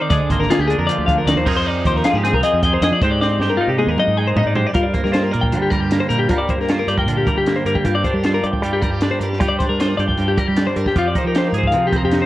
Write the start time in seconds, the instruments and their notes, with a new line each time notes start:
Already playing: clean electric guitar D#4
0.02 clean electric guitar D5
0.10 fingered electric bass D2, clean electric guitar D3 G#4 D5, kick, closed hi-hat
0.30 fingered electric bass G#1, clean electric guitar A#3 C5, kick, closed hi-hat
0.40 clean electric guitar A#4, snare
0.50 clean electric guitar F4 G#4, snare, closed hi-hat
0.59 fingered electric bass D2, clean electric guitar G4
0.68 clean electric guitar D4 G#4, closed hi-hat
0.79 fingered electric bass F2, clean electric guitar A#4
0.87 clean electric guitar F3 D5, closed hi-hat
0.98 fingered electric bass D2
1.06 clean electric guitar D3 F5, kick, closed hi-hat
1.18 clean electric guitar A#4
1.26 fingered electric bass D2, clean electric guitar D#3 D5, snare, closed hi-hat
1.35 fingered electric bass D#2, clean electric guitar C5
1.46 fingered electric bass F2, clean electric guitar F3 C4 D#4 G#4 A#4, kick, crash
1.57 clean electric guitar C5
1.67 clean electric guitar D#4 D5
1.85 fingered electric bass D#2, clean electric guitar G4 C5, kick, closed hi-hat
1.96 clean electric guitar A#4, snare
2.04 clean electric guitar F4 G#4, snare, closed hi-hat
2.13 fingered electric bass G#2, clean electric guitar G4
2.23 clean electric guitar C4 G#4, snare, closed hi-hat
2.33 fingered electric bass C2, clean electric guitar A#4, kick
2.43 clean electric guitar G#4 D#5, closed hi-hat
2.53 fingered electric bass F2
2.62 clean electric guitar G#4 G5, kick, closed hi-hat
2.74 clean electric guitar C5
2.81 fingered electric bass F2, clean electric guitar G#4 D#5, snare, closed hi-hat
2.91 fingered electric bass F3, clean electric guitar D5
3.01 fingered electric bass G#2, clean electric guitar G#2 G4 C5, kick, closed hi-hat
3.11 clean electric guitar D5
3.21 clean electric guitar C4 D5, snare
3.39 fingered electric bass G2, clean electric guitar G4 C5, snare
3.50 clean electric guitar A#4
3.57 clean electric guitar D#4 F4
3.68 fingered electric bass C3, clean electric guitar G4
3.78 clean electric guitar G#3 G#4, high tom
3.87 fingered electric bass D#2, clean electric guitar A#4
3.98 clean electric guitar D#4 D#5, mid tom
4.07 fingered electric bass G#2
4.17 clean electric guitar G#4 G5
4.27 clean electric guitar C5
4.36 fingered electric bass G#2, clean electric guitar D#4 D#5, floor tom
4.46 fingered electric bass G#2, clean electric guitar D5
4.55 clean electric guitar G#2 G4 C5, floor tom
4.67 clean electric guitar D5
4.73 clean electric guitar G2 F4 A#4, fingered electric bass G2, kick, closed hi-hat
4.83 clean electric guitar D5
4.94 clean electric guitar A#3 C5, kick, closed hi-hat
5.04 fingered electric bass G3, clean electric guitar A#4, snare
5.12 clean electric guitar F4 C5, snare, closed hi-hat
5.23 clean electric guitar A#4
5.31 fingered electric bass A#2, clean electric guitar A#4 D5, closed hi-hat
5.41 clean electric guitar G5, kick
5.52 clean electric guitar D3, fingered electric bass G3, closed hi-hat
5.62 clean electric guitar G4
5.70 clean electric guitar G3 A#4, kick, closed hi-hat
5.81 fingered electric bass G2, clean electric guitar G4
5.91 clean electric guitar A#3, snare, closed hi-hat
6.00 clean electric guitar C5
6.09 fingered electric bass A#2, clean electric guitar G3 A#4, closed hi-hat
6.19 clean electric guitar G4
6.29 clean electric guitar G2 F4 A#4, fingered electric bass G3, kick, closed hi-hat
6.38 clean electric guitar D5
6.49 clean electric guitar A#3 C5, kick, closed hi-hat
6.58 fingered electric bass G3, clean electric guitar A#4, snare
6.69 clean electric guitar F4 C5, snare, closed hi-hat
6.79 clean electric guitar A#4
6.87 fingered electric bass G2, clean electric guitar G4 D5, closed hi-hat
6.98 clean electric guitar A#4 G5, kick
7.06 fingered electric bass A#2, clean electric guitar D3, closed hi-hat
7.17 clean electric guitar G4
7.27 clean electric guitar G3 A#4, kick, closed hi-hat
7.36 fingered electric bass G3, clean electric guitar G4
7.46 clean electric guitar A#3, snare, closed hi-hat
7.56 clean electric guitar C5
7.65 fingered electric bass G2, clean electric guitar G3 A#4, closed hi-hat
7.75 clean electric guitar G4, kick
7.84 fingered electric bass G2, clean electric guitar G2 F4 G4, kick, closed hi-hat
7.95 clean electric guitar D5
8.04 clean electric guitar D4 C5, kick, closed hi-hat
8.14 fingered electric bass G3, clean electric guitar A#4
8.23 clean electric guitar F4 C5, snare, closed hi-hat
8.34 clean electric guitar A#4
8.43 fingered electric bass G2, clean electric guitar G4 D5, closed hi-hat
8.53 clean electric guitar G5, kick
8.62 clean electric guitar G2, fingered electric bass G3, closed hi-hat
8.73 clean electric guitar G4
8.82 clean electric guitar G3 A#4, kick, closed hi-hat
8.90 fingered electric bass G2, clean electric guitar G4
9.01 clean electric guitar D4, snare, closed hi-hat
9.11 clean electric guitar C5
9.19 fingered electric bass G2, clean electric guitar G3 A#4, closed hi-hat
9.29 clean electric guitar G4, snare
9.39 clean electric guitar G2 F4 G4, fingered electric bass G3, kick, closed hi-hat
9.48 clean electric guitar D5
9.59 clean electric guitar D4 C5, kick, closed hi-hat
9.69 fingered electric bass G3, clean electric guitar A#4
9.80 clean electric guitar F4 C5, snare, closed hi-hat
9.89 clean electric guitar A#4
9.97 fingered electric bass G2, clean electric guitar G4 D5, snare, closed hi-hat
10.08 clean electric guitar G5, kick
10.18 fingered electric bass G2, clean electric guitar G2, closed hi-hat
10.28 clean electric guitar G4
10.37 clean electric guitar G3 A#4, kick, closed hi-hat
10.48 fingered electric bass G3, clean electric guitar G4
10.56 clean electric guitar D4, snare, closed hi-hat
10.67 clean electric guitar C5
10.76 fingered electric bass G2, clean electric guitar G3 A#4, closed hi-hat
10.86 clean electric guitar G4, kick, snare
10.96 fingered electric bass F2, clean electric guitar F3 F4 G4, kick, closed hi-hat
11.08 clean electric guitar D5
11.15 clean electric guitar D#4 C5, kick, closed hi-hat
11.24 fingered electric bass F3, clean electric guitar A#4
11.35 clean electric guitar G4 C5, snare, closed hi-hat
11.48 clean electric guitar A#4
11.52 fingered electric bass G#2, clean electric guitar G#4, closed hi-hat
11.58 clean electric guitar C5
11.63 clean electric guitar F5, kick
11.71 clean electric guitar C3, fingered electric bass F3, closed hi-hat
11.87 clean electric guitar G4
11.92 clean electric guitar C4 A#4, kick, closed hi-hat
12.03 fingered electric bass F2, clean electric guitar G4
12.11 clean electric guitar D#4, snare, closed hi-hat
12.22 clean electric guitar C5